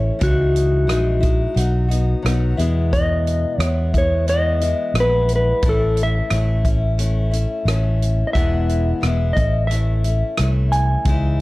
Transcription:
Already playing: steel-string acoustic guitar E3 A3 C#4 E4, clean electric guitar C#5
0.19 fingered electric bass C#2, steel-string acoustic guitar C#3 E3 G#3 D#4 E4, kick, closed hi-hat
0.23 clean electric guitar F#4
0.56 closed hi-hat
0.87 fingered electric bass A#1, steel-string acoustic guitar E3 G#3 D#4 E4, cross-stick, closed hi-hat
1.20 steel-string acoustic guitar G#3 D#4 E4, kick, closed hi-hat
1.54 fingered electric bass B1, steel-string acoustic guitar F#3 B3 D#4, closed hi-hat
1.59 steel-string acoustic guitar F#4
1.88 steel-string acoustic guitar B3 D#4 F#4, closed hi-hat
2.22 fingered electric bass B1, steel-string acoustic guitar F#3 B3 D#4 F#4, cross-stick, closed hi-hat
2.57 fingered electric bass E2, steel-string acoustic guitar E2 B2 E3 G#3 B3 E4, closed hi-hat
2.93 clean electric guitar D#5, kick, closed hi-hat
3.27 closed hi-hat
3.58 fingered electric bass E2, steel-string acoustic guitar E3 G#3 B3, clean electric guitar C#5, cross-stick, closed hi-hat
3.63 steel-string acoustic guitar E4
3.93 steel-string acoustic guitar E3 G#3 B3 E4, kick, closed hi-hat
3.98 clean electric guitar C#5
4.27 steel-string acoustic guitar E3 G#3 B3 E4, clean electric guitar D#5, closed hi-hat
4.60 steel-string acoustic guitar E3 G#3 B3 E4, closed hi-hat
4.94 fingered electric bass A#1, steel-string acoustic guitar E3 G#3, cross-stick, closed hi-hat
4.98 steel-string acoustic guitar B3 E4, clean electric guitar B4
5.29 closed hi-hat
5.36 clean electric guitar B4
5.62 fingered electric bass A1, steel-string acoustic guitar A2 E3 A3 C#4 E4, kick, closed hi-hat
5.69 clean electric guitar A4
5.97 closed hi-hat
6.03 clean electric guitar E5
6.30 fingered electric bass A1, steel-string acoustic guitar E3 A3 C#4 E4, cross-stick, closed hi-hat
6.65 steel-string acoustic guitar A3 C#4 E4, kick, closed hi-hat
6.98 steel-string acoustic guitar E3 A3 C#4 E4, closed hi-hat
7.31 steel-string acoustic guitar A3 C#4 E4, closed hi-hat
7.65 fingered electric bass A1, steel-string acoustic guitar E3 A3 C#4 E4, cross-stick, closed hi-hat
8.02 closed hi-hat
8.27 clean electric guitar D#5
8.33 fingered electric bass E1, steel-string acoustic guitar E2 B2 E3 G#3 B3 E4, clean electric guitar E5, kick, closed hi-hat
8.69 closed hi-hat
9.01 fingered electric bass E1, steel-string acoustic guitar E3 G#3 B3 E4, cross-stick, closed hi-hat
9.33 fingered electric bass A1, steel-string acoustic guitar C#4 E4, clean electric guitar D#5, kick, closed hi-hat
9.38 steel-string acoustic guitar A3
9.67 steel-string acoustic guitar E3 A3 C#4, clean electric guitar E5, closed hi-hat
9.72 steel-string acoustic guitar E4
10.04 steel-string acoustic guitar A3 C#4 E4, closed hi-hat
10.38 fingered electric bass C2, steel-string acoustic guitar E3 A3 C#4 E4, cross-stick, closed hi-hat
10.72 clean electric guitar G#5, closed hi-hat
11.05 fingered electric bass C#2, steel-string acoustic guitar C#3 E3 G#3 D#4 E4, kick, closed hi-hat

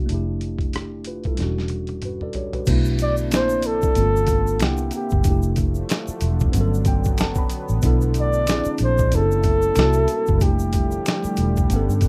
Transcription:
Already playing: tine electric piano A#3 D4 F#4
0.06 tine electric piano A3 D4, closed hi-hat
0.10 fingered electric bass F1, tine electric piano E4
0.15 tine electric piano G4
0.41 closed hi-hat
0.59 kick, closed hi-hat
0.73 tine electric piano D4 G4, cross-stick, closed hi-hat
1.04 tine electric piano F4 B4, closed hi-hat
1.24 tine electric piano E4 A4, kick, closed hi-hat
1.35 fingered electric bass E1, tine electric piano G3 C#4, closed hi-hat
1.40 tine electric piano D4 F#4, snare
1.58 snare
1.68 closed hi-hat, high tom
1.87 closed hi-hat, high tom
2.02 tine electric piano F#4 B4, closed hi-hat, mid tom
2.21 tine electric piano A4 D5, mid tom
2.33 tine electric piano G4 C#5, closed hi-hat, floor tom
2.53 tine electric piano F#4 B4, closed hi-hat, floor tom
2.66 fingered electric bass B1, tine electric piano A3 B3 D4, analog synth pad D4, kick, closed hi-hat, crash, shaker
2.71 tine electric piano E4
2.85 shaker
2.99 flugelhorn D5, closed hi-hat, shaker
3.17 shaker
3.30 fingered electric bass A#1, tine electric piano A#3 C4 D4, finger snap, snare, closed hi-hat, shaker
3.34 tine electric piano E4, flugelhorn C5
3.49 shaker
3.62 flugelhorn A4, closed hi-hat, shaker
3.82 kick, shaker
3.95 fingered electric bass G1, tine electric piano A3 B3 C#4, closed hi-hat, shaker
3.99 tine electric piano F4
4.16 shaker
4.27 kick, closed hi-hat, shaker
4.47 shaker
4.59 fingered electric bass C2, tine electric piano A#3 D4 E4, flugelhorn G4, finger snap, snare, closed hi-hat, shaker
4.63 tine electric piano F#5
4.77 shaker
4.91 closed hi-hat, shaker
4.96 flugelhorn G4
5.10 fingered electric bass F#1, kick, shaker
5.22 fingered electric bass F1, analog synth pad D3 F3, tine electric piano G3 D4, kick, closed hi-hat, shaker
5.26 analog synth pad A3, tine electric piano A3 E4
5.30 tine electric piano G4
5.43 shaker
5.56 kick, closed hi-hat, shaker
5.75 shaker
5.89 finger snap, snare, closed hi-hat, shaker
6.08 muted fingered electric bass stroke, shaker
6.21 fingered electric bass E1, closed hi-hat, shaker
6.40 kick, shaker
6.52 fingered electric bass G1, analog synth pad F#3 B3, tine electric piano B3 C#4, closed hi-hat, shaker
6.57 tine electric piano F#3 A4
6.74 shaker
6.85 tine electric piano G5, kick, closed hi-hat, shaker
7.04 kick, shaker
7.18 fingered electric bass F#1, tine electric piano A5, finger snap, snare, closed hi-hat, shaker
7.35 tine electric piano B5, kick, shaker
7.50 closed hi-hat, shaker
7.69 fingered electric bass A1, shaker
7.82 fingered electric bass B1, tine electric piano B3 D4 E4, analog synth pad D4, kick, closed hi-hat, shaker
7.86 tine electric piano A4
8.01 shaker
8.14 closed hi-hat, shaker
8.20 flugelhorn D5
8.33 shaker
8.47 fingered electric bass A#1, tine electric piano C4 D4 E4, finger snap, snare, closed hi-hat, shaker
8.52 tine electric piano G#4
8.65 muted fingered electric bass stroke, shaker
8.78 fingered electric bass A#1, closed hi-hat, shaker
8.83 flugelhorn C5
8.98 kick, shaker
9.11 fingered electric bass F#1, tine electric piano B3 C#4 E4, flugelhorn A4, closed hi-hat, shaker
9.16 tine electric piano G#4
9.22 tine electric piano A4
9.32 shaker
9.43 kick, closed hi-hat, shaker
9.62 shaker
9.75 fingered electric bass C2, analog synth pad G3, tine electric piano A#3 D4 E4, finger snap, snare, closed hi-hat, shaker
9.80 tine electric piano F#4
9.93 shaker
10.08 closed hi-hat, shaker
10.27 fingered electric bass F#1, kick, shaker
10.38 fingered electric bass F1, analog synth pad D3 F3 A3, tine electric piano A3 D4, kick, closed hi-hat, shaker
10.43 tine electric piano E4 G4, flugelhorn G4
10.59 shaker
10.73 kick, closed hi-hat, shaker
10.91 shaker
11.06 finger snap, snare, closed hi-hat, shaker
11.24 muted fingered electric bass stroke, shaker
11.37 fingered electric bass E1, closed hi-hat, shaker
11.57 kick, shaker
11.68 fingered electric bass G1, tine electric piano A3 C#4, analog synth pad B3 F#5, closed hi-hat, shaker
11.73 tine electric piano B3 A4 F#5
11.89 fingered electric bass G2, shaker
12.01 fingered electric bass G1, kick, closed hi-hat, shaker

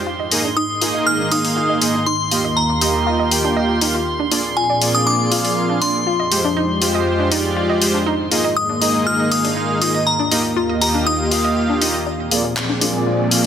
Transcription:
Already playing: synth texture C6
0.07 analog synth pad G#2 D#3 A#3 G#4 D#5, synth pluck F4
0.20 synth pluck D#5
0.31 supersaw synth A#3 D#4 G#4 D#5, open hi-hat
0.44 synth pluck D4
0.56 synth pluck D#4, synth bell D#6
0.81 supersaw synth A#3 D#4 G#4 D#5, synth pluck F4, open hi-hat
0.94 synth pluck D#5
1.07 synth bell F6
1.19 synth pluck D4
1.31 supersaw synth A#3 D#4 G#4 F5, synth pluck D#4, synth bell D#6, open hi-hat
1.45 open hi-hat
1.56 synth pluck F4
1.69 synth pluck D#5
1.82 supersaw synth A#3 D#4 G#4 D#5, open hi-hat
1.95 synth pluck D4
2.06 analog synth pad D#2 A#3 G4 F5, synth pluck D#4, synth bell C6
2.31 supersaw synth A#3 F4 G4 D#5, synth pluck F4, open hi-hat
2.45 synth pluck D#5
2.57 synth bell A#5
2.70 synth pluck D4
2.81 supersaw synth A#3 F4 G4 D#5, synth pluck D#4, open hi-hat
3.06 synth pluck F4
3.20 synth pluck D#5
3.31 supersaw synth A#3 F4 G4 G5, open hi-hat
3.44 synth pluck D4
3.56 synth pluck D#5
3.81 supersaw synth A#3 F4 G4 F5, synth pluck D#4, open hi-hat
3.94 synth pluck F4
4.07 analog synth pad A#2 F3 C4 G#4 D5
4.20 synth pluck D4
4.32 supersaw synth A#3 F4 G#4 D5, synth pluck D4, open hi-hat
4.57 synth pluck F4, synth bell G#5
4.70 synth pluck D5
4.82 supersaw synth A#3 F4 G#4 D5, open hi-hat
4.95 synth pluck D4, synth bell D#6
5.07 synth pluck D4, synth bell D6
5.32 supersaw synth A#3 F4 G#4 F5, synth pluck F4, open hi-hat
5.45 synth pluck D5, open hi-hat
5.70 synth pluck D4
5.82 supersaw synth A#3 G#4 D5, synth pluck D4, synth bell C6, open hi-hat
6.07 analog synth pad F2 G#3 G4 C5, synth pluck F4
6.20 synth pluck D#5
6.32 supersaw synth G#3 F4 G4 C5, open hi-hat
6.45 synth pluck D4
6.57 synth pluck D#4
6.82 supersaw synth G#3 F4 G4 C5, synth pluck F4, open hi-hat
6.95 synth pluck D#5
7.20 synth pluck D4
7.32 supersaw synth G#3 F4 G4 D5, synth pluck D#4, open hi-hat
7.57 synth pluck F4
7.70 synth pluck D#5
7.82 supersaw synth G#3 F4 G4 C5, open hi-hat
7.94 synth pluck D4
8.06 analog synth pad G#2 D#3 A#3 G#4 D#5, synth pluck D#4
8.31 supersaw synth A#3 D#4 G#4 D#5, synth pluck F4, open hi-hat
8.44 synth pluck D#5
8.56 synth bell D#6
8.69 synth pluck D4
8.81 supersaw synth A#3 D#4 G#4 D#5, synth pluck D#4, open hi-hat
9.06 synth pluck F4, synth bell F6
9.19 synth pluck D#5
9.32 supersaw synth A#3 D#4 G#4 F5, synth bell D#6, open hi-hat
9.44 synth pluck D4, open hi-hat
9.56 synth pluck D#4
9.81 supersaw synth A#3 D#4 G#4 D#5, synth pluck F4, synth bell D#6, open hi-hat
9.95 synth pluck D#5
10.07 analog synth pad D#2 A#3 G4 F5, synth bell A#5
10.19 synth pluck D4
10.31 supersaw synth A#3 F4 G4 D#5, synth pluck D#4, open hi-hat
10.56 synth pluck F4
10.69 synth pluck D#5
10.82 supersaw synth A#3 F4 G4 D#5, synth bell A#5, open hi-hat
10.94 synth pluck D4
11.06 synth pluck D#4, synth bell D#6
11.31 supersaw synth A#3 F4 G4 F5, synth pluck F4, open hi-hat
11.44 synth pluck D#5
11.69 synth pluck D4
11.81 supersaw synth A#3 F4 G4 D#5, synth pluck D#4, open hi-hat
12.06 analog synth pad A#2 F3 C4 G#4 D5, synth pluck D4, riser
12.31 supersaw synth A#3 F4 G#4 D5, synth pluck F4, open hi-hat
12.44 synth pluck D5
12.57 clap
12.69 synth pluck D4
12.81 supersaw synth A#3 F4 G#4 D5, synth pluck D4, open hi-hat
13.06 synth pluck F4
13.19 synth pluck D5
13.31 supersaw synth A#3 F4 G#4 F5, open hi-hat

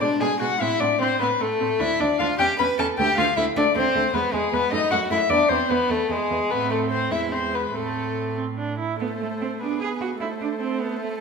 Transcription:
0.00 cello B2, viola G#3, violin D4 D5
0.21 cello B2, viola G#3, violin G#4 G#5
0.41 cello B2, viola G#3, violin F#4 F#5
0.60 cello A2, viola C4, violin E4 E5
0.80 cello A2, viola C4, violin D4 D5
1.00 cello A2, viola C4, violin C4 C5
1.20 cello A2, violin B3 B4, viola C4
1.39 cello A2, violin A3 A4, viola C4
1.60 cello A2, viola C4
1.80 cello D2, viola D4, violin E4 E5
1.99 cello D2, viola D4, violin D4 D5
2.19 cello D2, viola D4, violin F4 F5
2.38 cello E2, viola C#4, violin G4 G5
2.59 cello E2, viola C#4, violin B4 B5
2.79 cello E2, viola C#4, violin A4 A5
2.98 cello D2, viola A3, violin G4 G5
3.17 cello D2, viola A3, violin F4 F5
3.36 cello D2, viola A3, violin E4 E5
3.56 cello D2, viola A3, violin D4 D5
3.75 cello D2, viola A3, violin C4 C5
3.95 cello D2, viola A3
4.14 cello E2, viola G#3, violin B3 B4
4.33 cello E2, violin G#3 G#4, viola G#3
4.53 cello E2, viola G#3, violin B3 B4
4.71 cello F#2, viola A3, violin D#4 D#5
4.91 cello F#2, viola A3, violin F#4 F#5
5.10 cello F#2, viola A3, violin E4 E5
5.30 cello E2, viola B3, violin D4 D5
5.49 cello E2, viola B3, violin C4 C5
5.70 cello E2, violin B3 B4, viola B3
5.90 cello E2, violin A3 A4, viola B3
6.10 cello E2, violin G#3 G#4, viola B3
6.30 cello E2, viola B3
6.50 cello A2, violin B3 B4, viola C4
6.70 violin A3 A4
6.91 violin C4 C5
7.11 cello E2, viola G#3, violin E4 E5
7.32 violin C4 C5
7.53 violin B3 B4
7.74 cello A2, violin A3 A4, viola C4
8.37 viola C4
8.58 viola D4
8.79 viola E4
9.00 viola A3, cello B3, violin A4 C5
9.21 cello A3
9.41 cello C4
9.61 viola B3, cello D4, violin G#4 B4
9.81 cello G#4
10.01 cello F#4
10.21 viola A3, cello E4, violin A4 C5
10.41 cello D4
10.60 cello C4
10.80 cello B3
11.01 cello A3

